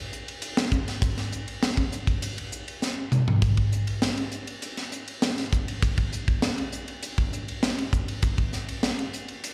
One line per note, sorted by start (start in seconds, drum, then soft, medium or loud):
0.13 hi-hat pedal medium
0.28 ride medium
0.42 hi-hat pedal medium
0.42 ride medium
0.57 snare loud
0.57 ride medium
0.72 kick medium
0.72 hi-hat pedal medium
0.88 snare soft
0.88 ride medium
1.02 kick loud
1.02 hi-hat pedal medium
1.02 ride medium
1.18 snare soft
1.18 ride medium
1.32 hi-hat pedal medium
1.48 ride medium
1.63 snare loud
1.63 hi-hat pedal medium
1.63 ride medium
1.77 kick medium
1.77 ride soft
1.92 hi-hat pedal medium
2.07 kick medium
2.07 ride medium
2.22 hi-hat pedal medium
2.22 ride medium
2.38 ride medium
2.52 hi-hat pedal medium
2.68 ride medium
2.82 snare medium
2.82 hi-hat pedal medium
3.12 hi-hat pedal medium
3.12 mid tom medium
3.28 floor tom medium
3.42 kick medium
3.42 hi-hat pedal medium
3.42 ride medium
3.57 kick medium
3.57 ride soft
3.72 hi-hat pedal medium
3.87 ride medium
4.02 snare medium
4.02 hi-hat pedal medium
4.02 ride medium
4.18 ride medium
4.32 hi-hat pedal medium
4.47 ride medium
4.62 hi-hat pedal medium
4.62 ride medium
4.77 snare soft
4.77 ride medium
4.92 hi-hat pedal medium
5.08 ride medium
5.22 snare loud
5.22 hi-hat pedal medium
5.22 ride medium
5.38 snare soft
5.38 ride medium
5.53 kick medium
5.53 hi-hat pedal medium
5.68 ride medium
5.82 kick loud
5.82 hi-hat pedal medium
5.82 ride medium
5.98 kick medium
5.98 ride medium
6.13 hi-hat pedal medium
6.28 kick medium
6.28 ride soft
6.42 snare loud
6.42 hi-hat pedal medium
6.42 ride medium
6.58 ride soft
6.72 hi-hat pedal medium
6.88 ride medium
7.03 hi-hat pedal medium
7.03 ride medium
7.18 kick medium
7.18 ride medium
7.33 hi-hat pedal medium
7.48 ride medium
7.63 snare medium
7.63 hi-hat pedal medium
7.63 ride medium
7.78 ride medium
7.93 kick medium
7.93 hi-hat pedal medium
8.08 ride medium
8.23 kick loud
8.23 hi-hat pedal medium
8.23 ride medium
8.38 kick medium
8.38 ride soft
8.53 snare soft
8.53 hi-hat pedal medium
8.69 ride medium
8.83 snare medium
8.83 hi-hat pedal medium
8.83 ride medium
8.99 ride soft
9.13 hi-hat pedal medium
9.28 ride medium
9.44 hi-hat pedal medium
9.44 ride medium